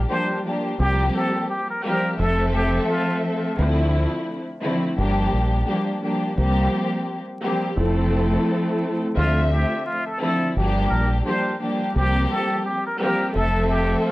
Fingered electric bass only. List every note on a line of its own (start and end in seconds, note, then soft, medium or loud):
0.80 1.09 C2 loud
2.19 2.78 F1 loud
3.59 4.05 D2 loud
4.98 5.27 G1 loud
5.33 5.62 A#1 medium
6.38 6.67 C2 loud
7.77 8.36 F1 loud
9.17 9.64 D2 loud
10.56 10.85 G1 loud
10.91 11.20 A#1 medium
11.96 12.25 C2 loud
13.35 13.94 F1 loud